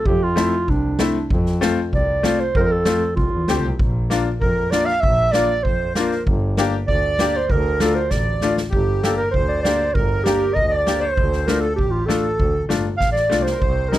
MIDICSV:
0, 0, Header, 1, 6, 480
1, 0, Start_track
1, 0, Tempo, 620476
1, 43, Time_signature, 2, 2, 24, 8
1, 5323, Tempo, 612245
1, 10892, End_track
2, 0, Start_track
2, 0, Title_t, "Accordion"
2, 0, Program_c, 0, 21
2, 3405, Note_on_c, 0, 70, 65
2, 3647, Note_on_c, 0, 74, 68
2, 3653, Note_off_c, 0, 70, 0
2, 3756, Note_on_c, 0, 77, 88
2, 3771, Note_off_c, 0, 74, 0
2, 3789, Note_off_c, 0, 77, 0
2, 3795, Note_on_c, 0, 76, 76
2, 3808, Note_on_c, 0, 77, 91
2, 3826, Note_off_c, 0, 76, 0
2, 3873, Note_off_c, 0, 77, 0
2, 3873, Note_on_c, 0, 76, 84
2, 4127, Note_off_c, 0, 76, 0
2, 4127, Note_on_c, 0, 74, 83
2, 4349, Note_off_c, 0, 74, 0
2, 4379, Note_on_c, 0, 72, 65
2, 4819, Note_off_c, 0, 72, 0
2, 5318, Note_on_c, 0, 74, 97
2, 5771, Note_off_c, 0, 74, 0
2, 5797, Note_on_c, 0, 70, 69
2, 6252, Note_off_c, 0, 70, 0
2, 6274, Note_on_c, 0, 74, 77
2, 6616, Note_off_c, 0, 74, 0
2, 6743, Note_on_c, 0, 67, 68
2, 7091, Note_off_c, 0, 67, 0
2, 7123, Note_on_c, 0, 70, 74
2, 7250, Note_off_c, 0, 70, 0
2, 7251, Note_on_c, 0, 72, 78
2, 7700, Note_off_c, 0, 72, 0
2, 7732, Note_on_c, 0, 70, 78
2, 8197, Note_on_c, 0, 75, 81
2, 8226, Note_off_c, 0, 70, 0
2, 8315, Note_on_c, 0, 74, 83
2, 8327, Note_off_c, 0, 75, 0
2, 8553, Note_on_c, 0, 72, 77
2, 8570, Note_off_c, 0, 74, 0
2, 9009, Note_off_c, 0, 72, 0
2, 9041, Note_on_c, 0, 69, 67
2, 9167, Note_on_c, 0, 67, 61
2, 9168, Note_off_c, 0, 69, 0
2, 9393, Note_on_c, 0, 69, 60
2, 9414, Note_off_c, 0, 67, 0
2, 9847, Note_off_c, 0, 69, 0
2, 10118, Note_on_c, 0, 77, 80
2, 10232, Note_on_c, 0, 74, 72
2, 10244, Note_off_c, 0, 77, 0
2, 10459, Note_off_c, 0, 74, 0
2, 10472, Note_on_c, 0, 72, 71
2, 10523, Note_on_c, 0, 70, 71
2, 10535, Note_off_c, 0, 72, 0
2, 10579, Note_on_c, 0, 72, 73
2, 10587, Note_off_c, 0, 70, 0
2, 10838, Note_on_c, 0, 70, 63
2, 10840, Note_off_c, 0, 72, 0
2, 10892, Note_off_c, 0, 70, 0
2, 10892, End_track
3, 0, Start_track
3, 0, Title_t, "Clarinet"
3, 0, Program_c, 1, 71
3, 46, Note_on_c, 1, 67, 93
3, 178, Note_on_c, 1, 65, 94
3, 189, Note_off_c, 1, 67, 0
3, 540, Note_on_c, 1, 62, 71
3, 551, Note_off_c, 1, 65, 0
3, 1014, Note_off_c, 1, 62, 0
3, 1507, Note_on_c, 1, 74, 83
3, 1856, Note_on_c, 1, 72, 84
3, 1867, Note_off_c, 1, 74, 0
3, 1973, Note_off_c, 1, 72, 0
3, 1982, Note_on_c, 1, 70, 98
3, 2008, Note_on_c, 1, 72, 80
3, 2020, Note_off_c, 1, 70, 0
3, 2042, Note_on_c, 1, 70, 102
3, 2054, Note_off_c, 1, 72, 0
3, 2101, Note_on_c, 1, 69, 85
3, 2112, Note_off_c, 1, 70, 0
3, 2439, Note_off_c, 1, 69, 0
3, 2444, Note_on_c, 1, 65, 69
3, 2896, Note_off_c, 1, 65, 0
3, 3413, Note_on_c, 1, 70, 84
3, 3643, Note_on_c, 1, 74, 97
3, 3655, Note_off_c, 1, 70, 0
3, 3758, Note_on_c, 1, 77, 93
3, 3770, Note_off_c, 1, 74, 0
3, 3873, Note_on_c, 1, 76, 114
3, 3884, Note_off_c, 1, 77, 0
3, 4116, Note_on_c, 1, 74, 106
3, 4128, Note_off_c, 1, 76, 0
3, 4357, Note_on_c, 1, 72, 88
3, 4368, Note_off_c, 1, 74, 0
3, 4600, Note_off_c, 1, 72, 0
3, 4606, Note_on_c, 1, 70, 68
3, 4827, Note_off_c, 1, 70, 0
3, 5322, Note_on_c, 1, 74, 106
3, 5703, Note_on_c, 1, 72, 92
3, 5714, Note_off_c, 1, 74, 0
3, 5820, Note_on_c, 1, 70, 91
3, 5832, Note_off_c, 1, 72, 0
3, 6058, Note_on_c, 1, 69, 81
3, 6070, Note_off_c, 1, 70, 0
3, 6164, Note_on_c, 1, 72, 83
3, 6176, Note_off_c, 1, 69, 0
3, 6288, Note_on_c, 1, 74, 84
3, 6300, Note_off_c, 1, 72, 0
3, 6648, Note_off_c, 1, 74, 0
3, 6769, Note_on_c, 1, 67, 77
3, 7009, Note_on_c, 1, 69, 88
3, 7021, Note_off_c, 1, 67, 0
3, 7111, Note_off_c, 1, 69, 0
3, 7116, Note_on_c, 1, 70, 76
3, 7224, Note_off_c, 1, 70, 0
3, 7229, Note_on_c, 1, 72, 76
3, 7350, Note_off_c, 1, 72, 0
3, 7365, Note_on_c, 1, 74, 74
3, 7470, Note_off_c, 1, 74, 0
3, 7475, Note_on_c, 1, 74, 89
3, 7723, Note_on_c, 1, 70, 81
3, 7735, Note_off_c, 1, 74, 0
3, 7954, Note_on_c, 1, 67, 92
3, 7966, Note_off_c, 1, 70, 0
3, 8195, Note_on_c, 1, 75, 99
3, 8206, Note_off_c, 1, 67, 0
3, 8298, Note_off_c, 1, 75, 0
3, 8302, Note_on_c, 1, 74, 90
3, 8556, Note_on_c, 1, 72, 82
3, 8567, Note_off_c, 1, 74, 0
3, 8880, Note_off_c, 1, 72, 0
3, 8885, Note_on_c, 1, 72, 53
3, 8908, Note_on_c, 1, 70, 85
3, 8920, Note_off_c, 1, 72, 0
3, 9025, Note_on_c, 1, 69, 78
3, 9037, Note_off_c, 1, 70, 0
3, 9139, Note_off_c, 1, 69, 0
3, 9144, Note_on_c, 1, 67, 73
3, 9265, Note_on_c, 1, 65, 71
3, 9277, Note_off_c, 1, 67, 0
3, 9382, Note_on_c, 1, 69, 78
3, 9394, Note_off_c, 1, 65, 0
3, 9873, Note_off_c, 1, 69, 0
3, 10098, Note_on_c, 1, 77, 87
3, 10209, Note_off_c, 1, 77, 0
3, 10214, Note_on_c, 1, 74, 84
3, 10453, Note_on_c, 1, 72, 74
3, 10465, Note_off_c, 1, 74, 0
3, 10814, Note_on_c, 1, 70, 73
3, 10826, Note_off_c, 1, 72, 0
3, 10892, Note_off_c, 1, 70, 0
3, 10892, End_track
4, 0, Start_track
4, 0, Title_t, "Upright piano"
4, 0, Program_c, 2, 0
4, 277, Note_on_c, 2, 57, 64
4, 283, Note_on_c, 2, 60, 57
4, 288, Note_on_c, 2, 64, 70
4, 401, Note_off_c, 2, 57, 0
4, 404, Note_off_c, 2, 60, 0
4, 407, Note_off_c, 2, 64, 0
4, 768, Note_on_c, 2, 57, 70
4, 768, Note_on_c, 2, 60, 56
4, 776, Note_on_c, 2, 64, 72
4, 887, Note_off_c, 2, 60, 0
4, 888, Note_off_c, 2, 57, 0
4, 892, Note_off_c, 2, 64, 0
4, 1246, Note_on_c, 2, 57, 82
4, 1249, Note_on_c, 2, 60, 75
4, 1256, Note_on_c, 2, 65, 82
4, 1367, Note_off_c, 2, 57, 0
4, 1368, Note_off_c, 2, 60, 0
4, 1372, Note_off_c, 2, 65, 0
4, 1726, Note_on_c, 2, 57, 67
4, 1733, Note_on_c, 2, 60, 59
4, 1736, Note_on_c, 2, 65, 80
4, 1848, Note_off_c, 2, 57, 0
4, 1851, Note_off_c, 2, 60, 0
4, 1853, Note_off_c, 2, 65, 0
4, 2208, Note_on_c, 2, 57, 66
4, 2212, Note_on_c, 2, 60, 54
4, 2219, Note_on_c, 2, 65, 71
4, 2329, Note_off_c, 2, 57, 0
4, 2331, Note_off_c, 2, 60, 0
4, 2334, Note_off_c, 2, 65, 0
4, 2695, Note_on_c, 2, 57, 56
4, 2701, Note_on_c, 2, 60, 60
4, 2706, Note_on_c, 2, 67, 76
4, 2812, Note_off_c, 2, 57, 0
4, 2815, Note_off_c, 2, 60, 0
4, 2818, Note_off_c, 2, 67, 0
4, 3171, Note_on_c, 2, 58, 66
4, 3181, Note_on_c, 2, 62, 70
4, 3183, Note_on_c, 2, 65, 82
4, 3290, Note_off_c, 2, 58, 0
4, 3295, Note_off_c, 2, 62, 0
4, 3296, Note_off_c, 2, 65, 0
4, 3657, Note_on_c, 2, 58, 65
4, 3659, Note_on_c, 2, 62, 59
4, 3662, Note_on_c, 2, 65, 76
4, 3772, Note_off_c, 2, 58, 0
4, 3773, Note_off_c, 2, 62, 0
4, 3775, Note_off_c, 2, 65, 0
4, 4129, Note_on_c, 2, 58, 73
4, 4133, Note_on_c, 2, 62, 62
4, 4137, Note_on_c, 2, 65, 72
4, 4247, Note_off_c, 2, 58, 0
4, 4250, Note_off_c, 2, 62, 0
4, 4251, Note_off_c, 2, 65, 0
4, 4611, Note_on_c, 2, 58, 74
4, 4613, Note_on_c, 2, 62, 61
4, 4618, Note_on_c, 2, 65, 78
4, 4727, Note_off_c, 2, 58, 0
4, 4728, Note_off_c, 2, 62, 0
4, 4731, Note_off_c, 2, 65, 0
4, 5091, Note_on_c, 2, 58, 81
4, 5092, Note_on_c, 2, 62, 73
4, 5099, Note_on_c, 2, 67, 83
4, 5206, Note_off_c, 2, 58, 0
4, 5206, Note_off_c, 2, 62, 0
4, 5210, Note_off_c, 2, 67, 0
4, 5568, Note_on_c, 2, 58, 67
4, 5573, Note_on_c, 2, 62, 64
4, 5579, Note_on_c, 2, 67, 83
4, 5686, Note_off_c, 2, 58, 0
4, 5689, Note_off_c, 2, 62, 0
4, 5691, Note_off_c, 2, 67, 0
4, 6046, Note_on_c, 2, 57, 55
4, 6054, Note_on_c, 2, 62, 61
4, 6056, Note_on_c, 2, 65, 77
4, 6166, Note_off_c, 2, 57, 0
4, 6170, Note_off_c, 2, 62, 0
4, 6171, Note_off_c, 2, 65, 0
4, 6532, Note_on_c, 2, 57, 59
4, 6535, Note_on_c, 2, 62, 60
4, 6541, Note_on_c, 2, 65, 73
4, 6650, Note_off_c, 2, 57, 0
4, 6651, Note_off_c, 2, 62, 0
4, 6654, Note_off_c, 2, 65, 0
4, 7011, Note_on_c, 2, 58, 62
4, 7017, Note_on_c, 2, 62, 52
4, 7020, Note_on_c, 2, 67, 68
4, 7130, Note_off_c, 2, 58, 0
4, 7133, Note_off_c, 2, 62, 0
4, 7135, Note_off_c, 2, 67, 0
4, 7491, Note_on_c, 2, 58, 69
4, 7497, Note_on_c, 2, 62, 54
4, 7501, Note_on_c, 2, 67, 61
4, 7610, Note_off_c, 2, 58, 0
4, 7613, Note_off_c, 2, 62, 0
4, 7616, Note_off_c, 2, 67, 0
4, 7969, Note_on_c, 2, 58, 60
4, 7973, Note_on_c, 2, 62, 60
4, 7977, Note_on_c, 2, 67, 70
4, 8089, Note_off_c, 2, 58, 0
4, 8091, Note_off_c, 2, 62, 0
4, 8094, Note_off_c, 2, 67, 0
4, 8445, Note_on_c, 2, 58, 59
4, 8452, Note_on_c, 2, 62, 56
4, 8456, Note_on_c, 2, 67, 71
4, 8567, Note_off_c, 2, 58, 0
4, 8571, Note_off_c, 2, 62, 0
4, 8573, Note_off_c, 2, 67, 0
4, 8926, Note_on_c, 2, 57, 62
4, 8932, Note_on_c, 2, 62, 53
4, 8938, Note_on_c, 2, 65, 59
4, 9047, Note_off_c, 2, 57, 0
4, 9050, Note_off_c, 2, 62, 0
4, 9053, Note_off_c, 2, 65, 0
4, 9402, Note_on_c, 2, 57, 63
4, 9404, Note_on_c, 2, 62, 58
4, 9412, Note_on_c, 2, 65, 70
4, 9525, Note_off_c, 2, 57, 0
4, 9525, Note_off_c, 2, 62, 0
4, 9529, Note_off_c, 2, 65, 0
4, 9876, Note_on_c, 2, 57, 56
4, 9879, Note_on_c, 2, 62, 58
4, 9882, Note_on_c, 2, 65, 66
4, 10000, Note_off_c, 2, 57, 0
4, 10002, Note_off_c, 2, 62, 0
4, 10003, Note_off_c, 2, 65, 0
4, 10351, Note_on_c, 2, 57, 60
4, 10358, Note_on_c, 2, 62, 57
4, 10365, Note_on_c, 2, 65, 70
4, 10476, Note_off_c, 2, 57, 0
4, 10480, Note_off_c, 2, 62, 0
4, 10483, Note_off_c, 2, 65, 0
4, 10838, Note_on_c, 2, 55, 54
4, 10845, Note_on_c, 2, 60, 49
4, 10847, Note_on_c, 2, 63, 67
4, 10892, Note_off_c, 2, 55, 0
4, 10892, Note_off_c, 2, 60, 0
4, 10892, Note_off_c, 2, 63, 0
4, 10892, End_track
5, 0, Start_track
5, 0, Title_t, "Double bass"
5, 0, Program_c, 3, 43
5, 41, Note_on_c, 3, 41, 100
5, 331, Note_off_c, 3, 41, 0
5, 527, Note_on_c, 3, 36, 84
5, 671, Note_off_c, 3, 36, 0
5, 1011, Note_on_c, 3, 41, 102
5, 1299, Note_off_c, 3, 41, 0
5, 1491, Note_on_c, 3, 36, 77
5, 1635, Note_off_c, 3, 36, 0
5, 1976, Note_on_c, 3, 41, 99
5, 2262, Note_off_c, 3, 41, 0
5, 2453, Note_on_c, 3, 36, 73
5, 2524, Note_off_c, 3, 36, 0
5, 2572, Note_on_c, 3, 40, 70
5, 2679, Note_off_c, 3, 40, 0
5, 2696, Note_on_c, 3, 38, 82
5, 2801, Note_off_c, 3, 38, 0
5, 2809, Note_on_c, 3, 36, 89
5, 2917, Note_off_c, 3, 36, 0
5, 2934, Note_on_c, 3, 34, 93
5, 3220, Note_off_c, 3, 34, 0
5, 3417, Note_on_c, 3, 41, 73
5, 3559, Note_off_c, 3, 41, 0
5, 3894, Note_on_c, 3, 34, 91
5, 4179, Note_off_c, 3, 34, 0
5, 4367, Note_on_c, 3, 41, 66
5, 4510, Note_off_c, 3, 41, 0
5, 4847, Note_on_c, 3, 31, 98
5, 5132, Note_off_c, 3, 31, 0
5, 5322, Note_on_c, 3, 38, 75
5, 5467, Note_off_c, 3, 38, 0
5, 5805, Note_on_c, 3, 38, 91
5, 6094, Note_off_c, 3, 38, 0
5, 6288, Note_on_c, 3, 33, 70
5, 6432, Note_off_c, 3, 33, 0
5, 6769, Note_on_c, 3, 31, 91
5, 7058, Note_off_c, 3, 31, 0
5, 7248, Note_on_c, 3, 38, 80
5, 7537, Note_off_c, 3, 38, 0
5, 7729, Note_on_c, 3, 31, 84
5, 8017, Note_off_c, 3, 31, 0
5, 8208, Note_on_c, 3, 38, 73
5, 8496, Note_off_c, 3, 38, 0
5, 8688, Note_on_c, 3, 38, 84
5, 8976, Note_off_c, 3, 38, 0
5, 9170, Note_on_c, 3, 33, 65
5, 9456, Note_off_c, 3, 33, 0
5, 9647, Note_on_c, 3, 38, 88
5, 9790, Note_off_c, 3, 38, 0
5, 9881, Note_on_c, 3, 31, 64
5, 10098, Note_off_c, 3, 31, 0
5, 10125, Note_on_c, 3, 33, 67
5, 10340, Note_off_c, 3, 33, 0
5, 10360, Note_on_c, 3, 36, 71
5, 10576, Note_off_c, 3, 36, 0
5, 10604, Note_on_c, 3, 36, 85
5, 10889, Note_off_c, 3, 36, 0
5, 10892, End_track
6, 0, Start_track
6, 0, Title_t, "Drums"
6, 43, Note_on_c, 9, 36, 84
6, 120, Note_off_c, 9, 36, 0
6, 284, Note_on_c, 9, 38, 90
6, 361, Note_off_c, 9, 38, 0
6, 527, Note_on_c, 9, 36, 65
6, 604, Note_off_c, 9, 36, 0
6, 764, Note_on_c, 9, 38, 89
6, 841, Note_off_c, 9, 38, 0
6, 1009, Note_on_c, 9, 36, 91
6, 1087, Note_off_c, 9, 36, 0
6, 1130, Note_on_c, 9, 38, 28
6, 1208, Note_off_c, 9, 38, 0
6, 1252, Note_on_c, 9, 38, 83
6, 1329, Note_off_c, 9, 38, 0
6, 1492, Note_on_c, 9, 36, 69
6, 1569, Note_off_c, 9, 36, 0
6, 1731, Note_on_c, 9, 38, 87
6, 1809, Note_off_c, 9, 38, 0
6, 1973, Note_on_c, 9, 36, 87
6, 2050, Note_off_c, 9, 36, 0
6, 2208, Note_on_c, 9, 38, 87
6, 2285, Note_off_c, 9, 38, 0
6, 2453, Note_on_c, 9, 36, 73
6, 2531, Note_off_c, 9, 36, 0
6, 2692, Note_on_c, 9, 38, 72
6, 2769, Note_off_c, 9, 38, 0
6, 2935, Note_on_c, 9, 36, 87
6, 3013, Note_off_c, 9, 36, 0
6, 3175, Note_on_c, 9, 38, 75
6, 3253, Note_off_c, 9, 38, 0
6, 3415, Note_on_c, 9, 36, 60
6, 3493, Note_off_c, 9, 36, 0
6, 3653, Note_on_c, 9, 38, 76
6, 3730, Note_off_c, 9, 38, 0
6, 3777, Note_on_c, 9, 38, 21
6, 3855, Note_off_c, 9, 38, 0
6, 3893, Note_on_c, 9, 36, 84
6, 3970, Note_off_c, 9, 36, 0
6, 4125, Note_on_c, 9, 38, 75
6, 4203, Note_off_c, 9, 38, 0
6, 4370, Note_on_c, 9, 36, 66
6, 4447, Note_off_c, 9, 36, 0
6, 4606, Note_on_c, 9, 38, 79
6, 4683, Note_off_c, 9, 38, 0
6, 4729, Note_on_c, 9, 38, 21
6, 4806, Note_off_c, 9, 38, 0
6, 4849, Note_on_c, 9, 36, 89
6, 4926, Note_off_c, 9, 36, 0
6, 5085, Note_on_c, 9, 38, 79
6, 5163, Note_off_c, 9, 38, 0
6, 5324, Note_on_c, 9, 36, 68
6, 5402, Note_off_c, 9, 36, 0
6, 5564, Note_on_c, 9, 38, 84
6, 5643, Note_off_c, 9, 38, 0
6, 5805, Note_on_c, 9, 36, 78
6, 5883, Note_off_c, 9, 36, 0
6, 6045, Note_on_c, 9, 38, 87
6, 6123, Note_off_c, 9, 38, 0
6, 6283, Note_on_c, 9, 38, 50
6, 6286, Note_on_c, 9, 36, 62
6, 6361, Note_off_c, 9, 38, 0
6, 6365, Note_off_c, 9, 36, 0
6, 6524, Note_on_c, 9, 38, 62
6, 6603, Note_off_c, 9, 38, 0
6, 6650, Note_on_c, 9, 38, 53
6, 6728, Note_off_c, 9, 38, 0
6, 6770, Note_on_c, 9, 36, 80
6, 6848, Note_off_c, 9, 36, 0
6, 7013, Note_on_c, 9, 38, 77
6, 7091, Note_off_c, 9, 38, 0
6, 7251, Note_on_c, 9, 36, 66
6, 7329, Note_off_c, 9, 36, 0
6, 7493, Note_on_c, 9, 38, 80
6, 7572, Note_off_c, 9, 38, 0
6, 7730, Note_on_c, 9, 36, 89
6, 7809, Note_off_c, 9, 36, 0
6, 7971, Note_on_c, 9, 38, 90
6, 8049, Note_off_c, 9, 38, 0
6, 8210, Note_on_c, 9, 36, 61
6, 8289, Note_off_c, 9, 36, 0
6, 8449, Note_on_c, 9, 38, 80
6, 8527, Note_off_c, 9, 38, 0
6, 8688, Note_on_c, 9, 36, 87
6, 8767, Note_off_c, 9, 36, 0
6, 8808, Note_on_c, 9, 38, 27
6, 8886, Note_off_c, 9, 38, 0
6, 8928, Note_on_c, 9, 38, 85
6, 9007, Note_off_c, 9, 38, 0
6, 9168, Note_on_c, 9, 36, 64
6, 9246, Note_off_c, 9, 36, 0
6, 9409, Note_on_c, 9, 38, 73
6, 9488, Note_off_c, 9, 38, 0
6, 9647, Note_on_c, 9, 36, 77
6, 9725, Note_off_c, 9, 36, 0
6, 9886, Note_on_c, 9, 38, 79
6, 9964, Note_off_c, 9, 38, 0
6, 10124, Note_on_c, 9, 36, 67
6, 10126, Note_on_c, 9, 38, 42
6, 10203, Note_off_c, 9, 36, 0
6, 10204, Note_off_c, 9, 38, 0
6, 10246, Note_on_c, 9, 38, 33
6, 10324, Note_off_c, 9, 38, 0
6, 10365, Note_on_c, 9, 38, 66
6, 10444, Note_off_c, 9, 38, 0
6, 10487, Note_on_c, 9, 38, 51
6, 10565, Note_off_c, 9, 38, 0
6, 10604, Note_on_c, 9, 36, 86
6, 10682, Note_off_c, 9, 36, 0
6, 10849, Note_on_c, 9, 38, 73
6, 10892, Note_off_c, 9, 38, 0
6, 10892, End_track
0, 0, End_of_file